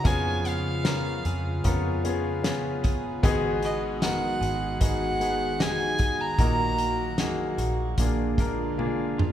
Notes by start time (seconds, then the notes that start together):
Already playing: C#3 A#3 C#4
0.04 F2 F3 G#3 B3 C#4 F4 G#4 G#5, kick, closed hi-hat
0.45 B3 F5, closed hi-hat
0.84 B3 C#4 F4 A#4, snare, closed hi-hat
1.25 F2 G#4, closed hi-hat
1.64 F2 B3 C#4 F4 A#4, kick, closed hi-hat
2.04 B3 C#4 F4 G#4, closed hi-hat
2.43 B3 C#4 F4 G#4, snare, closed hi-hat
2.84 G#4, kick, closed hi-hat
3.22 G#1 G#2 D#3 G#3 B3 D#4 F#4 G#4, kick, closed hi-hat
3.62 B3 D#5, closed hi-hat
4.01 B3 D#4 F#4 A#4 F#5, snare, closed hi-hat
4.41 G#1 G#4, closed hi-hat
4.80 G#1 B3 D#4 F#4 G#4 F#5, kick, closed hi-hat
5.20 B3 D#4 F#4 G#4, closed hi-hat
5.59 B3 D#4 F#4 G4 G#5, snare, closed hi-hat
5.67 G#4
5.99 G#4, kick, closed hi-hat
6.21 A#5
6.38 A#1 A#2 F#3 A#3 D#4 F#4 A#4, kick, closed hi-hat
6.78 A#3, closed hi-hat
7.18 A#3 D#4 F#4 G#4, snare, closed hi-hat
7.58 A#1 F#4, closed hi-hat
7.98 A#1 A#2 D3 G#3 A#3 D4 F4 G#4, kick, closed hi-hat
8.38 G#3 A#3 D4 F4 A#4, kick, closed hi-hat
8.78 A#3 D4 F4 G#4, high tom
9.18 F4, mid tom